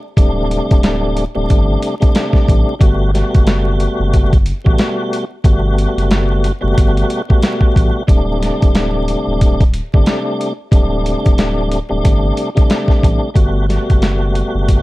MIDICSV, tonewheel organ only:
0, 0, Header, 1, 2, 480
1, 0, Start_track
1, 0, Key_signature, 1, "major"
1, 0, Tempo, 659341
1, 122, Time_signature, 4, 2, 24, 8
1, 10790, End_track
2, 0, Start_track
2, 0, Title_t, "Tonewheel organ"
2, 0, Program_c, 0, 16
2, 120, Note_on_c, 0, 48, 101
2, 123, Note_on_c, 0, 55, 88
2, 127, Note_on_c, 0, 57, 93
2, 130, Note_on_c, 0, 62, 112
2, 905, Note_off_c, 0, 48, 0
2, 906, Note_off_c, 0, 55, 0
2, 908, Note_off_c, 0, 57, 0
2, 910, Note_off_c, 0, 62, 0
2, 980, Note_on_c, 0, 48, 103
2, 984, Note_on_c, 0, 55, 87
2, 986, Note_on_c, 0, 57, 83
2, 990, Note_on_c, 0, 62, 104
2, 1417, Note_off_c, 0, 48, 0
2, 1419, Note_off_c, 0, 55, 0
2, 1420, Note_off_c, 0, 57, 0
2, 1422, Note_off_c, 0, 62, 0
2, 1455, Note_on_c, 0, 48, 93
2, 1459, Note_on_c, 0, 55, 76
2, 1463, Note_on_c, 0, 57, 79
2, 1466, Note_on_c, 0, 62, 103
2, 1998, Note_off_c, 0, 48, 0
2, 2000, Note_off_c, 0, 55, 0
2, 2002, Note_off_c, 0, 57, 0
2, 2004, Note_off_c, 0, 62, 0
2, 2032, Note_on_c, 0, 47, 91
2, 2036, Note_on_c, 0, 55, 85
2, 2040, Note_on_c, 0, 57, 89
2, 2043, Note_on_c, 0, 66, 101
2, 2262, Note_off_c, 0, 47, 0
2, 2264, Note_off_c, 0, 55, 0
2, 2266, Note_off_c, 0, 57, 0
2, 2267, Note_off_c, 0, 66, 0
2, 2284, Note_on_c, 0, 47, 95
2, 2288, Note_on_c, 0, 55, 88
2, 2291, Note_on_c, 0, 57, 87
2, 2294, Note_on_c, 0, 66, 97
2, 3182, Note_off_c, 0, 47, 0
2, 3184, Note_off_c, 0, 55, 0
2, 3186, Note_off_c, 0, 57, 0
2, 3187, Note_off_c, 0, 66, 0
2, 3380, Note_on_c, 0, 47, 101
2, 3383, Note_on_c, 0, 55, 81
2, 3387, Note_on_c, 0, 57, 80
2, 3389, Note_on_c, 0, 66, 105
2, 3817, Note_off_c, 0, 47, 0
2, 3818, Note_off_c, 0, 55, 0
2, 3820, Note_off_c, 0, 57, 0
2, 3822, Note_off_c, 0, 66, 0
2, 3961, Note_on_c, 0, 47, 94
2, 3964, Note_on_c, 0, 55, 90
2, 3967, Note_on_c, 0, 57, 86
2, 3971, Note_on_c, 0, 66, 98
2, 4745, Note_off_c, 0, 47, 0
2, 4747, Note_off_c, 0, 55, 0
2, 4748, Note_off_c, 0, 57, 0
2, 4750, Note_off_c, 0, 66, 0
2, 4811, Note_on_c, 0, 47, 96
2, 4814, Note_on_c, 0, 55, 90
2, 4818, Note_on_c, 0, 57, 94
2, 4821, Note_on_c, 0, 66, 113
2, 5252, Note_off_c, 0, 47, 0
2, 5254, Note_off_c, 0, 55, 0
2, 5256, Note_off_c, 0, 57, 0
2, 5257, Note_off_c, 0, 66, 0
2, 5304, Note_on_c, 0, 47, 94
2, 5307, Note_on_c, 0, 55, 82
2, 5312, Note_on_c, 0, 57, 84
2, 5314, Note_on_c, 0, 66, 103
2, 5843, Note_off_c, 0, 47, 0
2, 5844, Note_off_c, 0, 55, 0
2, 5846, Note_off_c, 0, 57, 0
2, 5848, Note_off_c, 0, 66, 0
2, 5876, Note_on_c, 0, 48, 96
2, 5879, Note_on_c, 0, 55, 87
2, 5883, Note_on_c, 0, 57, 88
2, 5885, Note_on_c, 0, 62, 95
2, 6100, Note_off_c, 0, 48, 0
2, 6103, Note_off_c, 0, 55, 0
2, 6106, Note_off_c, 0, 57, 0
2, 6108, Note_off_c, 0, 62, 0
2, 6108, Note_on_c, 0, 48, 90
2, 6111, Note_on_c, 0, 55, 85
2, 6114, Note_on_c, 0, 57, 83
2, 6117, Note_on_c, 0, 62, 107
2, 7014, Note_off_c, 0, 48, 0
2, 7016, Note_off_c, 0, 55, 0
2, 7017, Note_off_c, 0, 57, 0
2, 7019, Note_off_c, 0, 62, 0
2, 7232, Note_on_c, 0, 48, 82
2, 7235, Note_on_c, 0, 55, 82
2, 7238, Note_on_c, 0, 57, 88
2, 7241, Note_on_c, 0, 62, 106
2, 7663, Note_off_c, 0, 48, 0
2, 7665, Note_off_c, 0, 55, 0
2, 7666, Note_off_c, 0, 57, 0
2, 7668, Note_off_c, 0, 62, 0
2, 7798, Note_on_c, 0, 48, 99
2, 7802, Note_on_c, 0, 55, 88
2, 7805, Note_on_c, 0, 57, 92
2, 7809, Note_on_c, 0, 62, 106
2, 8584, Note_off_c, 0, 48, 0
2, 8586, Note_off_c, 0, 55, 0
2, 8587, Note_off_c, 0, 57, 0
2, 8589, Note_off_c, 0, 62, 0
2, 8656, Note_on_c, 0, 48, 102
2, 8659, Note_on_c, 0, 55, 85
2, 8664, Note_on_c, 0, 57, 84
2, 8667, Note_on_c, 0, 62, 106
2, 9095, Note_off_c, 0, 48, 0
2, 9097, Note_off_c, 0, 55, 0
2, 9099, Note_off_c, 0, 57, 0
2, 9101, Note_off_c, 0, 62, 0
2, 9135, Note_on_c, 0, 48, 94
2, 9139, Note_on_c, 0, 55, 77
2, 9142, Note_on_c, 0, 57, 78
2, 9147, Note_on_c, 0, 62, 105
2, 9678, Note_off_c, 0, 48, 0
2, 9680, Note_off_c, 0, 55, 0
2, 9682, Note_off_c, 0, 57, 0
2, 9684, Note_off_c, 0, 62, 0
2, 9712, Note_on_c, 0, 47, 88
2, 9715, Note_on_c, 0, 55, 85
2, 9719, Note_on_c, 0, 57, 87
2, 9722, Note_on_c, 0, 66, 96
2, 9941, Note_off_c, 0, 47, 0
2, 9943, Note_off_c, 0, 55, 0
2, 9945, Note_off_c, 0, 57, 0
2, 9947, Note_off_c, 0, 66, 0
2, 9963, Note_on_c, 0, 47, 96
2, 9966, Note_on_c, 0, 55, 84
2, 9968, Note_on_c, 0, 57, 84
2, 9973, Note_on_c, 0, 66, 91
2, 10790, Note_off_c, 0, 47, 0
2, 10790, Note_off_c, 0, 55, 0
2, 10790, Note_off_c, 0, 57, 0
2, 10790, Note_off_c, 0, 66, 0
2, 10790, End_track
0, 0, End_of_file